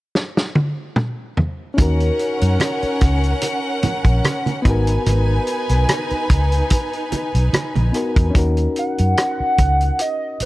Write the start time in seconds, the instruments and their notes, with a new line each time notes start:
0.15 snare
0.37 snare
0.55 high tom
0.96 mid tom
1.37 floor tom
1.74 reed electric piano C#4 D#4, violin section F#5, muted conga
1.78 fingered electric bass D#2, violin section C#4 A#4, reed electric piano F#4 A#4, kick, closed hi-hat
2.00 closed hi-hat
2.19 closed hi-hat
2.41 fingered electric bass F#2, closed hi-hat
2.60 cross-stick, closed hi-hat, high conga
2.82 muted fingered electric bass stroke, closed hi-hat
3.01 fingered electric bass C#2, kick, cross-stick, closed hi-hat
3.23 closed hi-hat
3.42 closed hi-hat, muted conga
3.83 muted fingered electric bass stroke, closed hi-hat, muted conga, low conga
4.05 fingered electric bass A#1, kick, closed hi-hat
4.24 cross-stick, closed hi-hat, high conga
4.46 closed hi-hat, high conga
4.62 fingered electric bass G#1, reed electric piano B3 D#4, violin section D#4 B4 G#5, kick, cross-stick, closed hi-hat
4.67 reed electric piano F#4 A#4
4.87 closed hi-hat
5.06 fingered electric bass G#1, closed hi-hat, muted conga
5.47 closed hi-hat
5.69 fingered electric bass B1, closed hi-hat
5.89 cross-stick, closed hi-hat, high conga
6.10 muted fingered electric bass stroke, closed hi-hat
6.30 fingered electric bass C#2, kick, closed hi-hat
6.52 closed hi-hat
6.70 kick, closed hi-hat, muted conga
6.93 closed hi-hat
7.12 muted fingered electric bass stroke, closed hi-hat, muted conga
7.35 fingered electric bass B1, closed hi-hat
7.53 muted fingered electric bass stroke, cross-stick, closed hi-hat, high conga
7.76 fingered electric bass A#1, closed hi-hat, high conga
7.92 reed electric piano B3 D#4 F#4 A#4, cross-stick, closed hi-hat
8.16 fingered electric bass E2, kick, closed hi-hat
8.30 reed electric piano C#4 D#4
8.35 fingered electric bass D#2, reed electric piano F#4 A#4, kick, closed hi-hat
8.57 closed hi-hat
8.76 analog synth lead F#5, closed hi-hat
8.98 fingered electric bass F#2, closed hi-hat
9.17 cross-stick, closed hi-hat
9.40 muted fingered electric bass stroke
9.58 fingered electric bass C#2, kick, closed hi-hat
9.81 closed hi-hat
9.99 analog synth lead D#5, closed hi-hat
10.40 muted fingered electric bass stroke, closed hi-hat